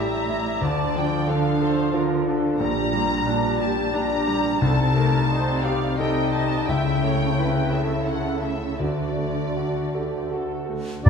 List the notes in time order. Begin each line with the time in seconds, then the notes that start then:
Already playing: A1 G3 E4 G4 A4 E5 A#5
0.00 A2 A#5
0.29 E4
0.61 D2 D3 F3 D4 D5 A5
0.96 F3 G5
1.29 D3 D4 A4 F5
1.61 A4 C5
1.94 D3 F4 A#4
2.28 D4 A4
2.60 A#1 A#2 G3 D4 G4 A#5
2.93 G3 F4
3.25 A#2 D4 G4
3.61 G4 A5
3.93 A#2 G3 D4 A#5
4.28 G3
4.60 C2 C3 G3 D#4 A4 A5
4.97 A3 A#4
5.31 C3 D#4 C5
5.65 G4 D5 F5
5.98 C3 G3 D#4 A4 D#5 G5
6.33 D#4 A5
6.67 C#2 C#3 A3 E4 E5 G5
7.04 A3 C#5
7.39 E4 B4
7.71 A4 E5
8.06 E4 F#5
8.42 A3 E5
8.79 D2 D3 A3 F#4 D5
9.18 A3
9.57 F#4
9.94 G4 A4
10.32 F#4 A4
10.68 A3 F#4
11.05 G1 G2 G3 A#3 D4 G4 D5 A#5